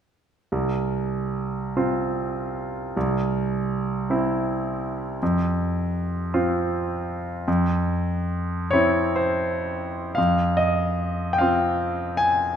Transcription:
0.52 2.92 C2 soft
1.77 2.92 C4 soft
1.77 2.92 F4 soft
2.97 5.18 C2 soft
4.10 5.18 C4 soft
4.10 5.18 E4 soft
5.23 7.44 F2 soft
6.34 7.44 C4 soft
6.34 7.44 F4 soft
7.48 10.13 F2 soft
8.71 10.14 C4 soft
8.71 10.14 E4 soft
8.71 9.17 C#5 medium
9.16 10.16 C5 soft
10.15 12.56 F2 soft
10.15 10.58 F5 soft
10.57 11.32 D#5 soft
11.33 11.40 G5 soft
11.38 12.56 C4 soft
11.38 12.56 F4 soft
11.38 12.19 F5 soft
12.17 12.56 G#5 medium

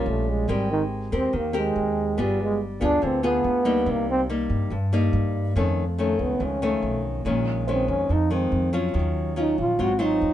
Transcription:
0.00 0.46 A#2 medium
0.00 0.45 G3 medium
0.00 0.11 A#3 medium
0.00 0.45 C#4 medium
0.00 0.46 F4 medium
0.06 0.45 A#1 medium
0.06 0.31 A3 medium
0.30 0.52 G#3 medium
0.48 1.08 G#1 medium
0.48 0.70 G3 medium
0.48 1.31 G#3 soft
0.48 1.09 C4 soft
0.48 1.09 G4 soft
0.48 1.09 A#4 medium
0.71 0.83 D#3 medium
1.12 1.32 D#2 medium
1.12 1.51 C4 medium
1.12 1.39 C4 medium
1.12 1.51 G4 medium
1.12 1.51 A#4 medium
1.33 1.73 D#2 medium
1.33 2.15 D#3 soft
1.38 1.56 A#3 medium
1.53 2.23 G#3 medium
1.53 2.14 C4 medium
1.53 2.14 G4 medium
1.53 2.14 A#4 medium
1.76 2.15 D#2 medium
2.18 2.77 G1 medium
2.18 3.00 G3 medium
2.18 2.60 B3 medium
2.18 2.60 F4 medium
2.18 2.60 G#4 medium
2.22 2.41 G3 medium
2.42 2.60 G#3 medium
2.81 3.01 D2 medium
2.81 3.20 B3 medium
2.81 3.07 D4 medium
2.81 3.20 F4 medium
2.81 3.20 G#4 medium
3.02 3.42 D2 medium
3.02 3.84 D3 medium
3.02 3.24 C4 medium
3.23 3.62 B3 medium
3.23 3.93 B3 medium
3.23 3.62 F4 medium
3.23 3.62 G#4 medium
3.44 3.84 D2 medium
3.65 4.28 G3 medium
3.65 4.28 A#3 medium
3.65 4.29 D#4 medium
3.86 4.46 C2 medium
3.86 4.69 C3 soft
3.91 4.10 A#3 medium
4.10 4.22 C4 medium
4.30 4.71 G3 soft
4.30 4.71 A#3 soft
4.30 4.72 D#4 medium
4.50 4.70 G2 medium
4.70 5.10 G2 medium
4.70 5.54 G2 medium
4.93 5.53 G3 medium
4.93 5.53 A#3 medium
4.93 5.53 D#4 medium
5.13 5.53 G2 medium
5.56 6.15 F2 medium
5.56 6.38 F2 medium
5.56 5.83 D#3 medium
5.56 5.84 A3 soft
5.56 5.83 C#4 medium
5.98 6.58 D#3 medium
5.98 6.59 A3 soft
5.98 6.59 C#4 medium
6.03 6.23 A3 medium
6.19 6.39 C#2 medium
6.19 6.46 B3 medium
6.40 6.80 C#2 medium
6.40 7.23 F2 soft
6.45 6.66 C#4 medium
6.62 7.22 D#3 medium
6.62 7.22 A3 medium
6.62 7.05 A3 medium
6.62 7.22 C#4 medium
6.82 7.22 B1 medium
7.25 7.84 A#1 medium
7.25 8.08 A#2 medium
7.25 7.64 D#3 soft
7.25 7.65 G#3 medium
7.25 7.65 C#4 medium
7.67 8.10 D#3 soft
7.67 8.10 G#3 soft
7.67 8.10 C#4 medium
7.67 8.83 C5 soft
7.72 7.88 C4 medium
7.88 8.08 F2 medium
7.88 8.14 C#4 medium
8.09 8.49 F2 medium
8.09 8.93 F2 medium
8.09 8.34 D#4 medium
8.31 8.70 D#3 medium
8.31 8.70 G#3 medium
8.31 8.74 C4 medium
8.52 8.91 F2 medium
8.73 9.33 F#3 medium
8.73 9.33 C#4 medium
8.73 9.34 F4 medium
8.94 9.54 D#2 medium
8.94 9.77 D#3 medium
9.36 9.77 F#3 medium
9.36 9.77 C#4 soft
9.36 9.58 D#4 medium
9.36 9.78 F4 medium
9.58 9.78 A#1 medium
9.58 9.83 F4 medium
9.79 10.18 G#1 medium
9.79 10.33 G#2 medium
9.79 9.91 F#3 medium
9.79 9.92 C4 medium
9.79 9.92 F4 medium
9.79 10.04 F#4 medium
9.99 10.33 F#3 medium
9.99 10.33 C4 medium
9.99 10.33 D#4 medium
9.99 10.33 F4 medium
10.21 10.33 D#2 medium

